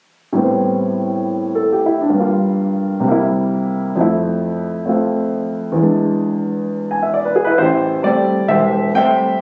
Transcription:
0.33 2.14 A2 soft
0.33 2.11 G3 soft
0.33 2.16 B3 soft
0.38 2.17 C4 soft
1.55 1.79 A4 soft
1.72 2.00 G4 soft
1.86 2.09 E4 soft
2.01 2.24 D4 soft
2.10 3.03 G2 soft
2.10 3.02 G3 soft
2.17 3.06 A#3 soft
2.17 3.08 F4 soft
3.00 3.93 C3 medium
3.00 3.95 G3 soft
3.08 3.97 A#3 soft
3.08 3.99 E4 medium
3.96 5.77 F2 medium
3.96 5.78 F3 soft
3.96 4.84 A3 soft
4.01 5.79 E4 medium
4.86 5.77 A3 soft
4.86 5.77 C4 soft
4.86 5.78 F4 soft
5.72 7.55 E2 soft
5.76 7.58 E3 soft
5.76 7.59 G#3 soft
5.83 7.61 D4 medium
6.91 7.04 G#5 soft
7.03 7.18 E5 soft
7.14 7.35 D5 soft
7.25 7.43 B4 soft
7.36 7.49 G#4 medium
7.44 7.59 E4 medium
7.44 7.57 B4 medium
7.58 7.97 A1 medium
7.58 8.46 E4 soft
7.58 8.05 G4 medium
7.58 8.05 C5 medium
8.03 8.35 G3 soft
8.03 8.35 A3 soft
8.03 8.35 C4 medium
8.03 8.49 G4 medium
8.03 8.50 D5 medium
8.48 8.88 E1 medium
8.48 9.36 G4 medium
8.48 8.96 C5 medium
8.48 8.90 E5 medium
8.94 9.26 G3 medium
8.94 9.26 A3 soft
8.94 9.27 C4 medium
8.94 9.37 C5 medium
8.94 9.38 E5 medium
8.94 9.36 G5 loud

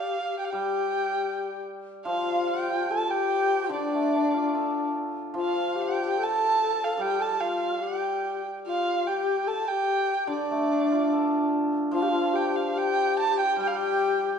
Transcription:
0.00 0.38 G4 medium
0.00 0.38 F5 medium
0.39 0.51 G4 medium
0.39 0.46 G5 medium
0.45 0.52 F5 medium
0.51 3.03 G3 medium
0.51 1.60 G4 medium
0.51 1.64 G5 medium
2.05 4.53 F3 medium
2.05 2.92 F4 medium
2.05 2.49 F5 medium
2.47 2.93 G5 medium
2.91 3.09 A4 medium
2.91 3.12 A5 loud
3.08 3.73 G4 medium
3.08 3.72 G5 loud
3.69 6.16 D3 medium
3.69 4.54 D4 medium
3.69 4.92 D5 medium
3.94 5.57 A3 soft
4.15 5.78 D4 medium
4.34 5.97 F4 soft
4.55 4.93 D4 medium
4.55 6.18 A4 soft
5.34 7.81 F3 medium
5.34 5.77 F4 medium
5.41 5.83 F5 medium
5.76 6.19 G4 medium
5.81 6.24 G5 medium
6.18 7.01 A4 medium
6.23 6.85 A5 loud
6.84 7.03 F5 medium
6.97 9.48 G3 medium
6.97 7.21 G4 medium
6.97 7.23 G5 loud
7.20 7.41 A4 medium
7.20 7.42 A5 loud
7.39 7.82 F4 medium
7.39 7.84 F5 medium
7.81 8.44 G4 medium
7.81 8.45 G5 medium
8.66 9.10 F4 medium
8.66 9.09 F5 medium
9.07 9.49 G4 medium
9.07 9.49 G5 medium
9.47 9.68 A4 medium
9.47 9.69 A5 loud
9.68 10.31 G4 medium
9.68 10.30 G5 loud
10.27 12.75 D3 medium
10.27 11.53 D4 medium
10.27 11.50 D5 medium
10.51 12.15 A3 medium
10.72 12.36 D4 medium
10.92 12.56 F4 medium
11.13 12.76 A4 medium
11.91 14.39 F3 medium
11.91 12.04 F4 loud
11.91 12.37 F5 medium
12.03 12.11 G4 medium
12.09 12.35 F4 loud
12.34 12.74 G4 medium
12.34 12.57 G5 medium
12.56 12.79 F5 medium
12.74 13.54 G4 medium
12.74 13.19 G5 loud
13.20 13.38 A5 loud
13.41 13.59 G5 loud
13.56 14.39 G3 medium
13.56 13.71 G4 medium
13.62 13.69 G5 loud
13.67 13.77 F5 medium
13.72 14.38 G4 loud
13.76 14.39 G5 medium

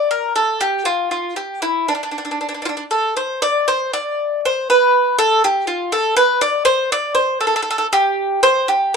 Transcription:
0.11 0.34 A#4 medium
0.36 0.61 A4 medium
0.61 0.84 G4 medium
0.85 1.09 F4 medium
1.11 1.36 F4 soft
1.36 1.62 G4 medium
1.62 1.85 E4 medium
1.88 1.93 D4 medium
1.95 2.01 D4 soft
2.03 2.09 D4 soft
2.11 2.17 D4 soft
2.18 2.24 D4 soft
2.25 2.30 D4 soft
2.31 2.38 D4 soft
2.41 2.46 D4 soft
2.49 2.53 D4 soft
2.54 2.60 D4 soft
2.62 2.65 D4 soft
2.62 2.69 F4 medium
2.69 2.75 D4 soft
2.77 2.83 D4 soft
2.91 3.14 A4 medium
3.17 3.42 C5 medium
3.42 3.65 D5 medium
3.68 3.91 C5 medium
3.93 4.40 D5 medium
4.45 4.67 C5 medium
4.70 5.18 B4 medium
5.19 5.41 A4 medium
5.44 5.67 G4 medium
5.67 5.91 F4 medium
5.92 6.16 A4 medium
6.17 6.41 B4 medium
6.41 6.65 D5 medium
6.65 6.89 C5 medium
6.92 7.14 D5 medium
7.15 7.39 C5 medium
7.41 7.46 A4 medium
7.47 7.55 A4 medium
7.56 7.61 A4 medium
7.62 7.69 A4 medium
7.71 7.77 A4 medium
7.78 7.86 A4 medium
7.93 8.40 G4 medium
8.43 8.67 C5 medium
8.68 8.92 G4 medium

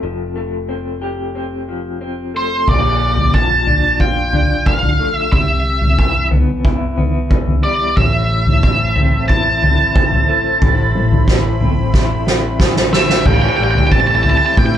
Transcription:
0.00 2.64 F1 medium
0.00 1.67 F3 soft
0.00 0.35 A3 soft
0.00 0.68 C4 soft
0.36 2.02 A3 soft
0.69 1.34 C4 soft
1.02 2.67 G4 soft
1.35 2.00 C4 soft
1.69 2.68 F3 soft
2.01 2.68 C4 soft
2.34 2.68 A3 soft
2.34 2.67 C5 soft
2.68 5.28 A#1 medium
2.68 4.33 A#2 medium
2.68 3.37 D5 medium
2.68 kick medium
2.68 floor tom medium
2.68 crash medium
3.17 floor tom medium
3.34 4.65 F3 soft
3.34 4.00 A5 medium
3.34 kick medium
3.67 4.32 D4 soft
3.67 floor tom medium
4.00 5.32 F4 medium
4.00 4.69 G5 medium
4.00 kick medium
4.33 5.32 D4 soft
4.33 floor tom medium
4.66 5.32 F3 medium
4.66 5.15 F5 medium
4.66 kick medium
4.83 floor tom medium
5.00 5.33 A3 soft
5.15 5.32 E5 medium
5.32 7.93 C2 medium
5.32 6.98 C3 soft
5.32 6.28 E5 medium
5.32 kick medium
5.32 floor tom medium
5.82 floor tom medium
5.98 7.30 E3 medium
5.98 kick medium
6.31 6.96 B3 medium
6.31 floor tom medium
6.65 9.29 E4 medium
6.65 kick medium
6.97 7.97 B3 soft
6.97 floor tom medium
7.30 8.62 E3 medium
7.30 kick medium
7.47 floor tom medium
7.63 7.97 G3 soft
7.63 7.97 D5 medium
7.96 10.57 A1 medium
7.96 10.61 A2 medium
7.96 13.22 E4 medium
7.96 13.22 A4 medium
7.96 13.22 C5 medium
7.96 9.25 E5 medium
7.96 10.59 A5 medium
7.96 kick medium
7.96 floor tom medium
8.46 floor tom medium
8.63 9.95 E3 medium
8.63 kick medium
8.96 9.62 C4 medium
8.96 floor tom medium
9.28 10.95 E4 medium
9.28 12.55 A5 medium
9.28 kick medium
9.62 11.28 C4 medium
9.62 floor tom medium
9.95 11.26 E3 medium
9.95 kick medium
10.12 floor tom medium
10.29 11.94 A3 medium
10.61 13.22 A1 medium
10.61 12.27 A2 medium
10.61 13.23 B5 medium
10.61 kick medium
10.61 floor tom medium
10.95 mid tom medium
11.11 floor tom medium
11.27 12.58 E3 medium
11.27 kick medium
11.27 snare medium
11.60 12.25 C4 medium
11.60 floor tom medium
11.60 mid tom medium
11.93 13.25 E4 medium
11.93 kick medium
11.93 snare soft
12.26 13.25 C4 medium
12.26 snare medium
12.59 13.25 E3 medium
12.59 kick medium
12.59 snare medium
12.76 snare medium
12.92 13.25 A3 medium
12.92 13.27 E5 medium
12.92 snare medium
13.09 snare medium
13.25 13.47 A1 medium
13.25 14.78 A2 medium
13.25 14.78 E4 medium
13.25 14.78 A4 medium
13.25 13.33 G5 medium
13.25 14.78 G5 medium
13.25 kick medium
13.25 floor tom medium
13.25 crash medium
13.34 13.41 G5 medium
13.42 13.48 G5 medium
13.49 13.56 G5 medium
13.57 13.80 A1 medium
13.57 14.78 G3 medium
13.57 13.63 G5 medium
13.64 13.70 G5 medium
13.71 13.78 G5 medium
13.75 13.86 G5 medium
13.75 floor tom medium
13.87 13.92 G5 medium
13.91 14.34 A1 medium
13.91 14.57 C4 medium
13.91 14.00 A5 medium
13.91 kick medium
14.00 14.07 A5 medium
14.07 14.15 A5 medium
14.15 14.23 A5 medium
14.23 14.78 E4 medium
14.23 14.29 A5 medium
14.23 floor tom medium
14.30 14.37 A5 medium
14.38 14.45 A5 medium
14.46 14.54 A5 medium
14.57 14.78 A2 medium
14.57 14.78 C4 medium
14.57 14.66 G5 medium
14.57 kick medium
14.66 14.74 G5 soft

